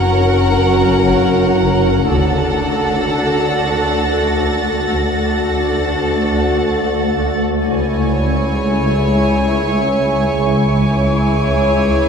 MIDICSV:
0, 0, Header, 1, 9, 480
1, 0, Start_track
1, 0, Tempo, 500000
1, 11602, End_track
2, 0, Start_track
2, 0, Title_t, "Violin section"
2, 0, Program_c, 0, 48
2, 0, Note_on_c, 0, 82, 37
2, 0, Note_on_c, 0, 85, 38
2, 1191, Note_off_c, 0, 85, 0
2, 1721, Note_off_c, 0, 82, 0
2, 2035, Note_on_c, 0, 93, 33
2, 2563, Note_on_c, 0, 94, 32
2, 5932, Note_off_c, 0, 93, 0
2, 5932, Note_off_c, 0, 94, 0
2, 5932, Note_on_c, 0, 93, 32
2, 7054, Note_off_c, 0, 93, 0
2, 7352, Note_on_c, 0, 85, 28
2, 7359, Note_on_c, 0, 80, 28
2, 10731, Note_off_c, 0, 85, 0
2, 10731, Note_on_c, 0, 86, 28
2, 11602, Note_off_c, 0, 80, 0
2, 11602, Note_off_c, 0, 86, 0
2, 11602, End_track
3, 0, Start_track
3, 0, Title_t, "Violin section"
3, 0, Program_c, 1, 48
3, 0, Note_on_c, 1, 78, 44
3, 1982, Note_off_c, 1, 78, 0
3, 2015, Note_on_c, 1, 78, 41
3, 4647, Note_off_c, 1, 78, 0
3, 4687, Note_on_c, 1, 78, 25
3, 7124, Note_off_c, 1, 78, 0
3, 7343, Note_on_c, 1, 80, 40
3, 9978, Note_off_c, 1, 80, 0
3, 10024, Note_on_c, 1, 80, 42
3, 11602, Note_off_c, 1, 80, 0
3, 11602, End_track
4, 0, Start_track
4, 0, Title_t, "Ambient pad"
4, 0, Program_c, 2, 92
4, 0, Note_on_c, 2, 66, 47
4, 0, Note_on_c, 2, 73, 50
4, 0, Note_on_c, 2, 82, 46
4, 1986, Note_off_c, 2, 73, 0
4, 1987, Note_off_c, 2, 82, 0
4, 1990, Note_off_c, 2, 66, 0
4, 2030, Note_on_c, 2, 69, 46
4, 2035, Note_on_c, 2, 74, 46
4, 2037, Note_on_c, 2, 66, 49
4, 4658, Note_off_c, 2, 66, 0
4, 4683, Note_off_c, 2, 74, 0
4, 4685, Note_off_c, 2, 69, 0
4, 4694, Note_on_c, 2, 74, 45
4, 4696, Note_on_c, 2, 69, 44
4, 4700, Note_on_c, 2, 66, 42
4, 7320, Note_off_c, 2, 74, 0
4, 7321, Note_off_c, 2, 69, 0
4, 7323, Note_off_c, 2, 66, 0
4, 7371, Note_on_c, 2, 76, 49
4, 7373, Note_on_c, 2, 68, 44
4, 7373, Note_on_c, 2, 73, 46
4, 9991, Note_off_c, 2, 76, 0
4, 9992, Note_off_c, 2, 68, 0
4, 9992, Note_off_c, 2, 73, 0
4, 10033, Note_on_c, 2, 68, 47
4, 10036, Note_on_c, 2, 76, 49
4, 10040, Note_on_c, 2, 73, 46
4, 11602, Note_off_c, 2, 68, 0
4, 11602, Note_off_c, 2, 73, 0
4, 11602, Note_off_c, 2, 76, 0
4, 11602, End_track
5, 0, Start_track
5, 0, Title_t, "Violin section"
5, 0, Program_c, 3, 48
5, 0, Note_on_c, 3, 70, 47
5, 1984, Note_off_c, 3, 70, 0
5, 2013, Note_on_c, 3, 69, 43
5, 4646, Note_off_c, 3, 69, 0
5, 4680, Note_on_c, 3, 69, 26
5, 7121, Note_off_c, 3, 69, 0
5, 7339, Note_on_c, 3, 73, 36
5, 9975, Note_off_c, 3, 73, 0
5, 10028, Note_on_c, 3, 73, 39
5, 11602, Note_off_c, 3, 73, 0
5, 11602, End_track
6, 0, Start_track
6, 0, Title_t, "Viola section"
6, 0, Program_c, 4, 48
6, 0, Note_on_c, 4, 61, 41
6, 1982, Note_off_c, 4, 61, 0
6, 2008, Note_on_c, 4, 62, 38
6, 4643, Note_off_c, 4, 62, 0
6, 4691, Note_on_c, 4, 62, 24
6, 7126, Note_off_c, 4, 62, 0
6, 7351, Note_on_c, 4, 64, 35
6, 9981, Note_off_c, 4, 64, 0
6, 10029, Note_on_c, 4, 64, 38
6, 11602, Note_off_c, 4, 64, 0
6, 11602, End_track
7, 0, Start_track
7, 0, Title_t, "Cello section"
7, 0, Program_c, 5, 48
7, 0, Note_on_c, 5, 42, 51
7, 1988, Note_off_c, 5, 42, 0
7, 2024, Note_on_c, 5, 38, 43
7, 4651, Note_off_c, 5, 38, 0
7, 4697, Note_on_c, 5, 38, 27
7, 7129, Note_off_c, 5, 38, 0
7, 7355, Note_on_c, 5, 37, 36
7, 9983, Note_off_c, 5, 37, 0
7, 10029, Note_on_c, 5, 37, 33
7, 11602, Note_off_c, 5, 37, 0
7, 11602, End_track
8, 0, Start_track
8, 0, Title_t, "Double bass section"
8, 0, Program_c, 6, 48
8, 2018, Note_on_c, 6, 38, 48
8, 2516, Note_off_c, 6, 38, 0
8, 4684, Note_on_c, 6, 38, 27
8, 5182, Note_off_c, 6, 38, 0
8, 7359, Note_on_c, 6, 37, 38
8, 9986, Note_off_c, 6, 37, 0
8, 10029, Note_on_c, 6, 37, 39
8, 11602, Note_off_c, 6, 37, 0
8, 11602, End_track
9, 0, Start_track
9, 0, Title_t, "Synth drone"
9, 0, Program_c, 7, 95
9, 0, Note_on_c, 7, 30, 66
9, 1977, Note_off_c, 7, 30, 0
9, 2024, Note_on_c, 7, 38, 53
9, 4687, Note_off_c, 7, 38, 0
9, 4699, Note_on_c, 7, 38, 54
9, 7322, Note_off_c, 7, 38, 0
9, 7364, Note_on_c, 7, 37, 52
9, 9988, Note_off_c, 7, 37, 0
9, 10025, Note_on_c, 7, 37, 59
9, 11602, Note_off_c, 7, 37, 0
9, 11602, End_track
0, 0, End_of_file